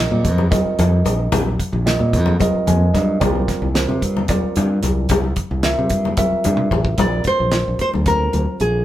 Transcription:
Already playing: tine electric piano G3
0.00 tine electric piano C4 F4 A#4 D#5
0.11 fingered electric bass A#2, high conga
0.25 fingered electric bass F2, kick, closed hi-hat
0.38 muted conga, low conga
0.50 tine electric piano G3 C4 F4 A#4 D#5, kick, snare, closed hi-hat, high conga
0.66 muted fingered electric bass stroke
0.79 fingered electric bass F2, closed hi-hat, low conga
1.05 fingered electric bass A#1, closed hi-hat, high conga
1.19 low conga
1.32 fingered electric bass A#1, kick, closed hi-hat, muted conga, low conga
1.46 high conga
1.60 kick, closed hi-hat
1.73 fingered electric bass A#1, low conga
1.85 tine electric piano G3 C4 F4 A#4 D#5, snare, closed hi-hat
1.99 fingered electric bass A#2, high conga
2.13 fingered electric bass F2, kick, closed hi-hat
2.26 muted conga, low conga
2.40 tine electric piano G3 C4 F4 A#4 D#5, kick, closed hi-hat, high conga
2.55 muted fingered electric bass stroke
2.67 fingered electric bass F2, tine electric piano G#5, closed hi-hat, low conga
2.94 fingered electric bass G2, tine electric piano D#5, kick, snare, closed hi-hat, high conga
3.08 low conga
3.20 fingered electric bass C2, tine electric piano G3 C4 F4 A#4 D5, kick, closed hi-hat, muted conga, low conga
3.35 high conga
3.48 kick, snare, closed hi-hat
3.62 fingered electric bass C2, low conga
3.74 tine electric piano G3 C4 F4 A#4 C5, snare, closed hi-hat
3.89 fingered electric bass C3, high conga
4.02 fingered electric bass G2, kick, closed hi-hat
4.17 muted conga, low conga
4.28 tine electric piano G3 C4 F4 A#4 D5, kick, snare, closed hi-hat, high conga
4.44 muted fingered electric bass stroke
4.56 fingered electric bass G2, closed hi-hat, low conga
4.83 fingered electric bass C2, snare, closed hi-hat, high conga
4.98 low conga
5.09 fingered electric bass C2, kick, closed hi-hat, muted conga, low conga
5.24 high conga, low conga
5.36 kick, closed hi-hat, low conga
5.51 fingered electric bass C2, low conga
5.63 tine electric piano G3 C4 F4 A#4 E5, snare, closed hi-hat
5.78 fingered electric bass C3, high conga
5.90 fingered electric bass G2, kick, closed hi-hat
6.05 muted conga, low conga
6.17 tine electric piano G3 C4 F4 A#4 E5, kick, closed hi-hat, high conga
6.32 muted fingered electric bass stroke, low conga
6.44 fingered electric bass G2, closed hi-hat, low conga
6.57 high tom
6.71 fingered electric bass A1, kick, high conga
6.85 kick, low conga
6.97 fingered electric bass A#1, tine electric piano G3 C4 F4 A#4 D5, nylon-string guitar D5, kick, closed hi-hat, muted conga, high conga
7.12 low conga
7.24 nylon-string guitar C5, muted fingered electric bass stroke, kick, closed hi-hat, low conga
7.39 fingered electric bass A#1, high conga
7.51 tine electric piano G3 C4 F4 A#4 D5, snare, closed hi-hat
7.68 fingered electric bass A#1
7.79 nylon-string guitar C5, muted fingered electric bass stroke, kick, closed hi-hat
7.94 fingered electric bass D2, muted conga, high conga
8.06 tine electric piano G3 C4 F4 A#4 C5, nylon-string guitar A#4, kick, closed hi-hat, low conga
8.33 fingered electric bass D2, closed hi-hat, high conga
8.46 low conga
8.60 fingered electric bass A#1, nylon-string guitar G#4, closed hi-hat

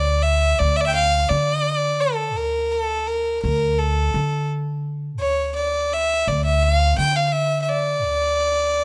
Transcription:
Already playing: upright bass D2, violin D5
0.22 violin E5
0.59 upright bass D2, violin D5
0.76 violin E5
0.81 violin D5
0.85 violin E5 G5
0.95 violin F5
1.28 upright bass D3, violin D5
2.00 violin A4
2.37 upright bass D2, violin A#4
2.71 violin A4
3.07 violin A#4
3.43 upright bass D2, violin A#4
3.78 violin A4
4.14 upright bass D3
5.19 upright bass D2, violin C#5
5.55 violin D5
5.93 violin E5
6.27 upright bass D2, violin D5
6.45 violin E5
6.63 violin F5
6.98 upright bass D3, violin G5
7.16 violin F5
7.27 violin F5
7.32 violin E5
7.62 violin E5
7.69 violin D5
8.05 upright bass D2

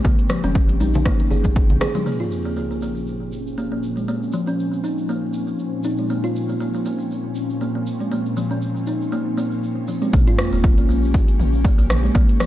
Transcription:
Already playing: ambient pad C#3 C4 G4
0.04 analog synth bass A#1, kalimba A#3, kick, closed hi-hat, muted conga, high conga, low conga, shaker
0.19 closed hi-hat
0.29 kalimba F3, cross-stick, muted conga, shaker
0.44 analog synth bass F1, kalimba C#4, closed hi-hat, mid tom, high conga, shaker
0.55 kick, closed hi-hat, shaker
0.69 closed hi-hat, muted conga
0.80 analog synth bass A#1, kalimba D#4, high conga, shaker
0.94 closed hi-hat, muted conga, low conga, shaker
1.05 kalimba A#3, kick, cross-stick, closed hi-hat, mid tom, shaker
1.20 closed hi-hat, muted conga
1.31 analog synth bass G1, kalimba G#4, low conga, shaker
1.44 kick, muted conga, high conga, shaker
1.55 kick, closed hi-hat, shaker
1.70 analog synth bass A#1, closed hi-hat, low conga
1.81 kalimba G#4, cross-stick, mid tom, muted conga, shaker
1.94 kalimba F3, high conga, shaker
2.06 ambient pad A#2 F3 C4 C#4, kalimba A#3, crash, sub drop, shaker
2.20 kalimba F4, shaker
2.31 shaker
2.45 kalimba A#3, shaker
2.57 kalimba A#3, shaker
2.71 kalimba A#3, shaker
2.82 kalimba A#3, shaker
2.95 shaker
3.07 shaker
3.32 shaker
3.47 shaker
3.58 kalimba A#3, shaker
3.72 kalimba A#3
3.83 shaker
3.97 kalimba G#3, shaker
4.08 kalimba A#3, shaker
4.22 shaker
4.32 kalimba F3, shaker
4.47 kalimba C#4, shaker
4.59 shaker
4.73 shaker
4.84 kalimba D#4, shaker
4.98 shaker
5.09 kalimba A#3, shaker
5.33 shaker
5.47 shaker
5.59 shaker
5.83 kalimba D#4, shaker
5.98 kalimba G#3, shaker
6.09 kalimba A#3, shaker
6.24 kalimba F4, shaker
6.36 shaker
6.49 kalimba A#3, shaker
6.60 kalimba A#3, shaker
6.74 kalimba A#3, shaker
6.85 kalimba A#3, shaker
6.99 shaker
7.11 shaker
7.35 shaker
7.50 shaker
7.61 kalimba A#3, shaker
7.75 kalimba A#3
7.87 shaker
8.00 kalimba G#3, shaker
8.12 kalimba A#3, shaker
8.26 shaker
8.37 kalimba F3, shaker
8.51 kalimba C#4, shaker
8.62 shaker
8.76 shaker
8.86 kalimba D#4, shaker
9.02 shaker
9.12 kalimba A#3, shaker
9.38 kalimba A#3, shaker
9.51 shaker
9.63 shaker
9.88 kalimba F3, shaker
10.02 kalimba G#3, shaker
10.13 analog synth bass A#1, kalimba A#3, ambient pad A#3 C#4 G4, kick, closed hi-hat, sub drop, shaker
10.27 kalimba F4, closed hi-hat, shaker
10.39 cross-stick, shaker
10.52 analog synth bass F1, kalimba A#3, closed hi-hat, shaker
10.63 kalimba A#3, kick, closed hi-hat, shaker
10.78 kalimba A#3, closed hi-hat, shaker
10.89 analog synth bass A#1, kalimba A#3, shaker
11.03 shaker
11.14 kick, closed hi-hat, shaker
11.28 closed hi-hat, shaker
11.39 analog synth bass A#1, mid tom, shaker
11.53 shaker
11.65 kalimba A#3, kick, closed hi-hat, shaker
11.78 analog synth bass A#1, kalimba A#3, closed hi-hat, shaker
11.90 cross-stick, mid tom, shaker
12.04 kalimba G#3, shaker
12.15 analog synth bass A#1, kalimba A#3, kick, closed hi-hat, shaker
12.29 closed hi-hat, shaker
12.40 kalimba F3, cross-stick, shaker

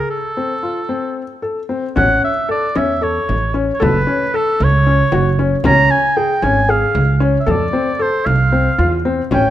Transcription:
Already playing: grand piano G#4
0.10 oboe A4
0.37 grand piano C4
0.63 grand piano F4
0.89 grand piano C4
1.42 grand piano A4
1.69 grand piano C4
1.96 upright bass A1, grand piano C#4, oboe F#5, frame drum
2.24 oboe E5
2.49 grand piano A4, oboe D5
2.75 upright bass E2, grand piano C#4, oboe E5, frame drum
3.01 grand piano A4, oboe C#5
3.29 upright bass A1, frame drum
3.54 grand piano C#4
3.74 oboe C#5
3.80 upright bass F#1, grand piano A4, oboe B4, frame drum
4.07 grand piano C#4
4.34 grand piano A4, oboe A4
4.60 upright bass C#2, oboe C#5, frame drum
4.87 grand piano C#4
5.12 upright bass F#1, grand piano F#4, frame drum
5.39 grand piano C#4
5.64 upright bass C#2, grand piano C#4, oboe A#5, frame drum
5.91 oboe G#5
6.16 grand piano G#4, oboe G5
6.42 upright bass G#1, grand piano C#4, oboe G#5, frame drum
6.69 grand piano G#4, oboe F5
6.95 upright bass C#2, frame drum
7.20 grand piano C#4
7.40 oboe E5
7.46 upright bass F2, grand piano A4, frame drum
7.51 oboe D5
7.73 grand piano C4, frame drum
7.99 grand piano A4, oboe C5, frame drum
8.26 upright bass C2, oboe F5, frame drum
8.52 grand piano C4
8.78 upright bass E2, grand piano F4, frame drum
9.05 grand piano C4
9.31 upright bass A1, grand piano C#4, oboe G5, frame drum

